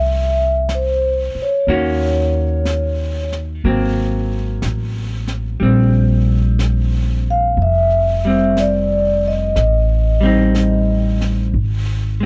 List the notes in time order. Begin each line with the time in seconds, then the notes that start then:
Already playing: C2 F3 A3 G4 E5
0.69 brush sweep, snare, hi-hat pedal
0.75 C5
1.35 muted upright bass stroke
1.42 C#5
1.67 D#2 D#3 A#3 C#4 F#4, brush sweep
2.65 brush sweep, snare, hi-hat pedal
3.32 snare
3.64 G#1 F#3 A#3 C4, brush sweep
4.62 A1, brush sweep, snare, hi-hat pedal
5.27 snare
5.60 A#1 G3 C4, brush sweep
6.59 brush sweep, snare, hi-hat pedal
7.30 F5
7.57 F1, brush sweep
7.62 E5
8.25 G3 C4
8.57 D5, brush sweep, snare, hi-hat pedal
9.28 D#5
9.56 A1, brush sweep, snare
10.21 G3 C4
10.26 D#4
10.55 brush sweep, snare, hi-hat pedal
11.21 snare
11.53 G#1, brush sweep
12.20 G#3